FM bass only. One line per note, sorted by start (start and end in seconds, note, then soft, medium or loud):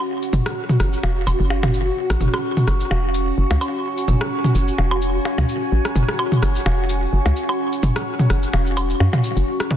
0.33 0.41 F#1 medium
0.80 0.96 F#1 medium
1.03 1.26 E1 medium
1.27 1.35 E1 medium
1.40 1.91 F#1 medium
2.10 2.17 A1 loud
2.21 2.29 F#1 medium
2.67 2.83 F#1 medium
2.91 3.32 E1 loud
3.38 3.46 F#1 medium
3.51 3.57 C#2 loud
4.08 4.16 F#1 medium
4.55 4.71 F#1 medium
4.78 5.19 E1 medium
5.38 5.45 C#2 medium
5.72 5.80 A1 medium
5.96 6.04 F#1 loud
6.42 6.58 F#1 medium
6.66 7.07 E1 loud
7.13 7.21 F#1 medium
7.26 7.32 C#2 loud
7.83 7.91 F#1 medium
8.30 8.46 F#1 medium
8.54 8.94 E1 medium
9.00 9.09 F#2 loud
9.37 9.43 F#1 medium